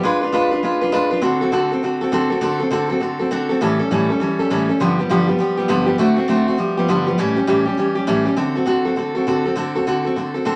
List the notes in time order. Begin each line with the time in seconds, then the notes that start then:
0.03 G#3 D4 F4 B4
0.21 D4 F4 B4
0.32 G#3 D4 F4 B4
0.51 D4 F4 B4
0.63 G#3 D4 F4 B4
0.81 D4 F4 B4
0.92 G#3 D4 F4 B4
1.11 D4 F4 B4
1.21 D3 C4 F#4 A4
1.41 C4 F#4 A4
1.52 D3 C4 F#4 A4
1.72 C4 F#4 A4
1.83 D3 C4 F#4 A4
2.01 C4 F#4 A4
2.12 D3 C4 F#4 A4
2.30 C4 F#4 A4
2.41 D3 C4 F#4 A4
2.60 C4 F#4 A4
2.71 D3 C4 F#4 A4
2.90 C4 F#4 A4
3.00 D3 C4 F#4 A4
3.19 C4 F#4 A4
3.31 D3 C4 F#4 A4
3.49 C4 F#4 A4
3.61 A2 E3 G3 C#4 A4
3.79 G3 C#4 A4
3.91 A2 E3 G3 C#4 A4
4.10 G3 C#4 A4
4.20 E3 G3 C#4 A4
4.39 G3 C#4 A4
4.50 A2 E3 G3 C#4 A4
4.69 G3 C#4 A4
4.80 G2 D3 F3 G3 B3 G4
4.99 F3 G3 B3 G4
5.09 G2 D3 F3 G3 B3 G4
5.28 F3 G3 B3 G4
5.38 F3 G3 B3 G4
5.57 F3 G3 B3 G4
5.68 G2 D3 F3 G3 B3 G4
5.86 F3 G3 B3 G4
5.98 D3 A3 C4 F#4
6.16 A3 C4 F#4
6.28 D3 A3 C4 F#4
6.48 A3 C4 F#4
6.58 F3 G3 B3 G4
6.77 F3 G3 B3 G4
6.88 G2 D3 F3 G3 B3 G4
7.07 F3 G3 B3 G4
7.18 A2 E3 G3 C#4 G4
7.36 G3 C#4 G4
7.47 A2 E3 G3 C#4 G4
7.65 G3 C#4 G4
7.77 E3 G3 C#4 G4
7.95 G3 C#4 G4
8.07 A2 E3 G3 C#4 G4
8.25 G3 C#4 G4
8.37 D3 C4 F#4 A4
8.55 C4 F#4 A4
8.66 D3 C4 F#4 A4
8.85 C4 F#4 A4
8.96 D3 C4 F#4 A4
9.15 C4 F#4 A4
9.27 D3 C4 F#4 A4
9.45 C4 F#4 A4
9.56 D3 C4 F#4 A4
9.75 C4 F#4 A4
9.87 D3 C4 F#4 A4
10.05 C4 F#4 A4
10.16 D3 C4 F#4 A4
10.34 C4 F#4 A4
10.45 D3 C4 F#4 A4